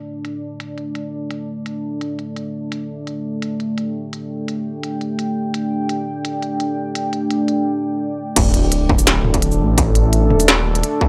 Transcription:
Already playing: ambient pad A3 D4 D5 A5
0.25 closed hi-hat
0.60 closed hi-hat
0.78 closed hi-hat
0.95 closed hi-hat
1.31 closed hi-hat
1.66 closed hi-hat
2.01 closed hi-hat
2.19 closed hi-hat
2.36 closed hi-hat
2.72 ambient pad G5, closed hi-hat
3.07 closed hi-hat
3.42 closed hi-hat
3.60 closed hi-hat
3.78 closed hi-hat
4.13 closed hi-hat
4.48 closed hi-hat
4.83 closed hi-hat
5.01 closed hi-hat
5.19 closed hi-hat
5.54 closed hi-hat
5.89 closed hi-hat
6.25 closed hi-hat
6.42 closed hi-hat
6.60 closed hi-hat
6.95 closed hi-hat
7.13 closed hi-hat
7.31 closed hi-hat
7.48 closed hi-hat
8.36 detuned saw bass D1, ambient pad A3 D4 A4, kick, closed hi-hat, crash, sub drop
8.54 closed hi-hat
8.72 closed hi-hat
8.89 kick, mid tom
8.99 closed hi-hat, shaker
9.07 snare, closed hi-hat
9.25 mid tom
9.34 kick, closed hi-hat
9.42 closed hi-hat
9.52 shaker
9.60 detuned saw bass A1
9.78 kick, closed hi-hat
9.95 closed hi-hat
10.13 closed hi-hat
10.30 detuned saw bass D#1, mid tom
10.40 closed hi-hat, shaker
10.48 snare, closed hi-hat
10.75 closed hi-hat
10.83 closed hi-hat
11.01 kick

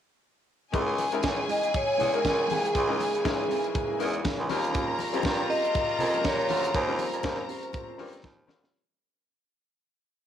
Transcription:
0.72 baritone saxophone C#2, french horn section C#3 E3 A#3, grand piano G#3 C#4 D#4 E4 A#4, clean electric guitar G#3 C#4 E4 A#4, string section G#4 G#5, kick, closed hi-hat, muted conga
0.89 muted clean electric guitar stroke
0.98 muted clean electric guitar stroke, open hi-hat, muted conga
1.12 baritone saxophone D#2, grand piano G#3 C#4 D#4 E4 A#4, clean electric guitar G#3 C#4 E4 C5, closed hi-hat
1.23 baritone saxophone C#2, kick, snare, closed hi-hat, high conga
1.39 muted clean electric guitar stroke
1.48 clean electric guitar G#3 C#4 E4 A#4, vibraphone D#5, open hi-hat
1.62 clean electric guitar G#3 C#4 E4 A#4, closed hi-hat
1.74 vibraphone C#5, kick, closed hi-hat, muted conga
1.88 muted clean electric guitar stroke
1.98 baritone saxophone E2, clean electric guitar G#3 C#4 E4 A#4, open hi-hat, muted conga, low conga
2.13 grand piano G#3 C#4 D#4 E4 A#4, clean electric guitar G#3 C#4 E4 A#4, vibraphone A#4, closed hi-hat
2.25 baritone saxophone C#2, kick, snare, closed hi-hat, high conga
2.37 muted clean electric guitar stroke
2.48 baritone saxophone C2, clean electric guitar G#3 C#4 E4 A#4, vibraphone G#4, open hi-hat, high conga
2.62 muted clean electric guitar stroke, closed hi-hat
2.75 baritone saxophone C#2, kick, closed hi-hat, muted conga
2.88 grand piano G#3 C#4 D#4 E4 A#4, clean electric guitar G#3 C#4 E4 A#4
2.99 clean electric guitar G#3 C#4 E4 A#4, open hi-hat, muted conga
3.13 baritone saxophone D#2, muted clean electric guitar stroke, closed hi-hat
3.23 baritone saxophone C#2, grand piano G#3 C#4 D#4 E4 A#4, muted clean electric guitar stroke, kick, snare, closed hi-hat, high conga
3.38 muted clean electric guitar stroke
3.49 clean electric guitar G#3 C#4 E4 A#4, open hi-hat
3.63 muted clean electric guitar stroke, closed hi-hat
3.74 muted clean electric guitar stroke, kick, closed hi-hat, muted conga
3.88 clean electric guitar G#3 C#4 E4 A#4
3.98 baritone saxophone E2, clean electric guitar G#3 C#4 E4 A#4, grand piano G#3 C#4 D#4 E4 A#4, open hi-hat, muted conga
4.14 muted clean electric guitar stroke, closed hi-hat
4.25 kick, snare, closed hi-hat, high conga
4.38 baritone saxophone C#2, muted clean electric guitar stroke
4.49 baritone saxophone D#2, french horn section C#3 G3 A#3 F4, grand piano G3 C4 C#4 F4 A#4, string section A#4 A#5, open hi-hat, high conga
4.63 muted clean electric guitar stroke, closed hi-hat
4.73 clean electric guitar C#4 F4 G4 C5, kick, closed hi-hat, muted conga
4.89 muted clean electric guitar stroke
4.99 muted clean electric guitar stroke, open hi-hat, muted conga
5.13 baritone saxophone F2, grand piano G3 C4 C#4 F4 G4, clean electric guitar C#4 F4 G4 C#5, closed hi-hat
5.23 baritone saxophone G2, kick, snare, closed hi-hat, high conga
5.40 muted clean electric guitar stroke
5.49 clean electric guitar C#4 F4 G4 C5, vibraphone D#5, open hi-hat
5.64 clean electric guitar C#4 F4 C5, closed hi-hat
5.75 kick, closed hi-hat, muted conga
5.89 muted clean electric guitar stroke
5.99 baritone saxophone F2, clean electric guitar C#4 F4 G4 C5, open hi-hat, low conga
6.13 grand piano F3 A#3 C#4 F4 A#4, clean electric guitar C#4 F4 G4 C5, closed hi-hat
6.19 grand piano G3
6.24 baritone saxophone A#2, vibraphone C#5, kick, snare, closed hi-hat, high conga
6.49 baritone saxophone D2, clean electric guitar C#4 F4 G4 C5, open hi-hat, high conga
6.64 muted clean electric guitar stroke, closed hi-hat
6.74 baritone saxophone D#2, vibraphone C5, muted clean electric guitar stroke, kick, closed hi-hat, muted conga
6.87 grand piano G3 C4 C#4 F4 A#4, clean electric guitar C#4 F4 G4 C5
6.98 clean electric guitar C#4 F4 G4 C5, open hi-hat, muted conga
7.13 baritone saxophone F2, muted clean electric guitar stroke, closed hi-hat
7.23 baritone saxophone D#2, grand piano G3 C4 C#4 F4 A#4, kick, snare, closed hi-hat, high conga
7.40 muted clean electric guitar stroke
7.49 clean electric guitar C#4 F4 G4 C5, open hi-hat
7.63 muted clean electric guitar stroke, closed hi-hat
7.73 muted clean electric guitar stroke, kick, closed hi-hat, muted conga
7.89 clean electric guitar C#4 F4 G4 C5
7.98 baritone saxophone G2, grand piano G3 C4 C#4 F4 A#4, clean electric guitar C#4 F4 G4 C5, open hi-hat, muted conga
8.13 muted clean electric guitar stroke, closed hi-hat
8.23 baritone saxophone D#2, clean electric guitar C#4 F4 G4 C5, kick, snare, high conga
8.39 muted clean electric guitar stroke
8.48 baritone saxophone D2, grand piano G3 C4 C#4 F4 A#4, snare, high conga
8.64 clean electric guitar C#4 F4 G4 C5, snare

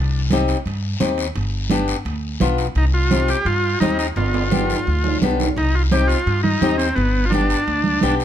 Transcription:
Already playing: upright bass C2
0.30 nylon-string guitar C4 D#4 G4, high conga, high timbale, short guiro
0.48 high timbale, short guiro
0.66 upright bass G2, high timbale, long guiro
1.00 upright bass D#2, nylon-string guitar C4 D#4 G4, high conga, high timbale, short guiro
1.18 high timbale, short guiro
1.35 upright bass G1, high timbale, long guiro
1.70 nylon-string guitar B3 D4 G4, high conga, high timbale, short guiro
1.88 high timbale, short guiro
2.05 upright bass D2, high timbale, long guiro
2.40 upright bass B1, nylon-string guitar B3 D4 F4, high conga, high timbale, short guiro
2.58 high timbale, short guiro
2.75 upright bass C2, transistor combo organ D#4, high timbale, long guiro
2.94 transistor combo organ F4
3.11 nylon-string guitar C4 D#4 G4, high conga, high timbale, short guiro
3.28 transistor combo organ G4, high timbale, short guiro
3.45 upright bass G2, transistor combo organ F4, high timbale, long guiro
3.80 upright bass D#2, nylon-string guitar C4 D#4 G4, transistor combo organ D#4, high conga, high timbale, short guiro
3.99 transistor combo organ D#4, high timbale, short guiro
4.16 upright bass G1, transistor combo organ F4, high timbale, long guiro
4.34 high timbale
4.51 nylon-string guitar B3 D4 G4, high conga, low timbale, short guiro
4.70 low timbale, short guiro
4.87 upright bass D2, long guiro
5.04 low timbale
5.21 upright bass B1, nylon-string guitar B3 D4 G4, high conga, low timbale, short guiro
5.40 low timbale, short guiro
5.56 upright bass C2, transistor combo organ D#4, high timbale, long guiro
5.75 transistor combo organ F4
5.91 nylon-string guitar C4 D#4 G4, transistor combo organ G4, high conga, high timbale, short guiro
6.08 transistor combo organ F4, high timbale, short guiro
6.26 upright bass G2, high timbale, long guiro
6.43 transistor combo organ D#4, high conga
6.61 upright bass D#2, nylon-string guitar C4 D#4 G4, high conga, high timbale, short guiro
6.78 transistor combo organ C4, high timbale, short guiro
6.95 upright bass G1, transistor combo organ B3, high timbale, long guiro
7.25 transistor combo organ F4
7.30 nylon-string guitar B3 D4, transistor combo organ D4, high conga, high timbale, short guiro
7.34 nylon-string guitar G4
7.50 high timbale, short guiro
7.67 upright bass D2, high timbale, long guiro
7.84 high conga
8.01 upright bass B1, nylon-string guitar B3 D4 G4, high conga, high timbale, short guiro
8.20 high timbale, short guiro

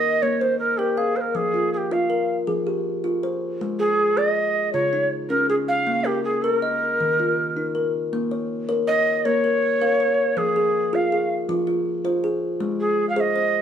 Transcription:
Already playing: native american-style wooden flute D#5, kalimba D#5
0.22 kalimba A#3, native american-style wooden flute C#5
0.41 native american-style wooden flute C5, kalimba C5
0.59 native american-style wooden flute A#4
0.78 native american-style wooden flute G4, kalimba A#4
0.97 native american-style wooden flute G#4, kalimba F5
1.16 native american-style wooden flute C5
1.21 native american-style wooden flute A#4
1.35 kalimba F3, native american-style wooden flute G#4
1.54 kalimba F4
1.73 native american-style wooden flute G#4
1.77 native american-style wooden flute G4
1.91 kalimba F4, native american-style wooden flute F5
2.10 kalimba A#4
2.47 kalimba F3 G#4
2.67 kalimba G4
3.04 kalimba F4
3.23 kalimba C5
3.61 kalimba G#3
3.79 native american-style wooden flute G#4, kalimba G#4
4.17 kalimba G#4, native american-style wooden flute D5
4.28 native american-style wooden flute D#5
4.73 kalimba C#3 F4, native american-style wooden flute C#5
4.93 kalimba D#4
5.29 kalimba C#4, native american-style wooden flute A#4
5.49 native american-style wooden flute G#4, kalimba G#4
5.68 native american-style wooden flute F5
5.87 kalimba A#3
6.05 native american-style wooden flute G4, kalimba A#4
6.24 native american-style wooden flute G#4
6.42 native american-style wooden flute A4, kalimba A#4
6.54 native american-style wooden flute A#4
6.62 kalimba D#5
7.01 kalimba D#3
7.20 kalimba F4
7.57 kalimba D#4
7.75 kalimba A#4
8.13 kalimba A#3
8.31 kalimba C#5
8.69 kalimba A#4 C#5
8.87 kalimba C#5, native american-style wooden flute D#5
9.25 kalimba A#3 A#4, native american-style wooden flute C#5
9.44 kalimba A#4
9.82 kalimba A#4 F5
10.00 kalimba C#5
10.37 kalimba F3, native american-style wooden flute G#4
10.56 kalimba G#4
10.93 kalimba F4 G#4, native american-style wooden flute F5
11.12 kalimba G#4
11.49 kalimba F3 F4
11.67 kalimba F4
12.05 kalimba F4 C5
12.24 kalimba G#4
12.60 kalimba G#3
12.80 native american-style wooden flute G#4
13.09 native american-style wooden flute F5
13.16 kalimba G#4 C5, native american-style wooden flute D#5 F5
13.36 kalimba C5

